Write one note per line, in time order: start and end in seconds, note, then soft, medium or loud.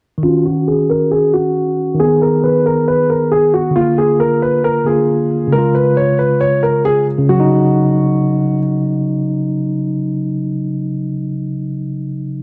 0.18 1.93 D#3 medium
0.23 1.96 C#4 medium
0.23 0.43 F4 loud
0.28 1.99 F#4 medium
0.45 0.65 F#4 medium
0.67 0.87 G#4 medium
0.89 1.09 A#4 medium
1.11 1.31 G#4 medium
1.33 1.96 F#4 medium
1.95 3.70 D#3 medium
2.00 3.73 B3 medium
2.00 2.20 G#4 loud
2.05 3.75 G#4 medium
2.22 2.42 A#4 medium
2.44 2.64 B4 medium
2.66 2.86 A#4 medium
2.88 3.08 B4 medium
3.10 3.30 A#4 medium
3.32 3.52 G#4 medium
3.54 3.74 F#4 medium
3.71 4.81 D3 medium
3.76 4.84 A#3 medium
3.76 3.96 F4 loud
3.81 4.87 F4 medium
3.98 4.18 G#4 medium
4.20 4.40 A#4 medium
4.42 4.62 B4 medium
4.64 4.84 A#4 medium
4.84 5.51 D3 soft
4.84 5.53 A#3 soft
4.84 5.49 G#4 medium
4.89 5.54 F4 medium
5.47 7.17 C#3 medium
5.52 7.26 G#3 medium
5.52 5.72 A#4 medium
5.58 7.28 F4 medium
5.75 5.95 B4 medium
5.97 6.17 C#5 medium
6.19 6.39 B4 medium
6.41 6.61 C#5 medium
6.63 6.83 A#4 medium
6.85 7.05 G#4 medium
7.18 10.85 C#3 medium
7.29 10.96 F#3 medium
7.29 8.57 F#4 medium
7.40 11.06 D#4 medium